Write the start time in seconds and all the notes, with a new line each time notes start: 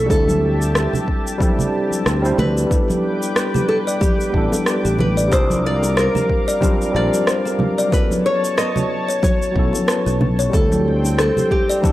Already playing: F#3 B3 C#4 E4 A4 E5
0.06 D2 G3 C4 D4, kick
0.10 E4 G4 A4 A5, shaker
0.28 high conga, shaker
0.62 shaker
0.75 cross-stick, shaker
0.93 high conga, low conga, shaker
1.08 kick
1.27 shaker
1.38 G3 C4 D4 E4, kick, high conga, shaker
1.42 A4
1.59 low conga, shaker
1.91 high conga, shaker
2.06 D2, cross-stick, shaker
2.22 G3 C4 D4 E4 C5, shaker
2.38 D2 B4, high conga, low conga
2.58 shaker
2.67 G3 B3 D4 G4 B4 D6, kick
2.71 E4 A4 G5, shaker
2.90 high conga, shaker
3.23 shaker
3.36 B4, cross-stick, shaker
3.54 G4, high conga, low conga, shaker
3.69 A4
3.87 D5, shaker
4.01 G4, kick, high conga, shaker
4.21 shaker
4.30 A1 G3 B3 D4, kick
4.36 E4 A4
4.52 high bongo, high conga, shaker
4.66 B4, cross-stick, shaker
4.85 A1 G4, shaker
4.99 B4, high bongo, high conga, low conga
5.17 D5, shaker
5.28 G3 C4 D4 G4 A#4 F5
5.32 C2 F4 A#4 C5, kick, shaker
5.50 high conga, shaker
5.66 D5
5.83 high bongo, shaker
5.97 A#4 C5, cross-stick, shaker
6.15 G4, high conga, low conga, shaker
6.30 kick
6.48 D5, shaker
6.60 G3 C4 D4 F4 G4 A#4, kick, high conga, shaker
6.82 shaker
6.91 A#1 G3 C4 D4
6.96 F4 A#4 D5
7.14 high conga, shaker
7.27 C5, cross-stick, shaker
7.45 G4, high bongo, shaker
7.59 high conga, low conga
7.78 D5, shaker
7.89 F#3 B3 C#4 F#4 C#5 A5, kick
7.93 E4 A4 B4, shaker
8.11 high conga, shaker
8.26 C#5
8.45 shaker
8.58 B4 D#5, cross-stick, shaker
8.76 F#4, high conga, low conga, shaker
9.09 C#5, shaker
9.23 F#4 C#5, kick, high conga, shaker
9.42 shaker
9.51 F#3 B3 C#4
9.56 B1 E4 A4, kick
9.73 high bongo, high conga, shaker
9.88 B4, cross-stick, shaker
10.06 B1 F#4, shaker
10.21 high bongo, high conga, low conga
10.39 C#5, shaker
10.50 D2 G3 C4 D4 G4 G5, kick
10.54 E4 A4, shaker
10.72 high conga, shaker
11.05 high bongo, shaker
11.19 A4 C5, cross-stick, shaker
11.37 G4, high conga, low conga, shaker
11.51 G4, kick
11.70 D5, shaker
11.82 G3 C4 D4 E4 G4 A4, kick, high conga, shaker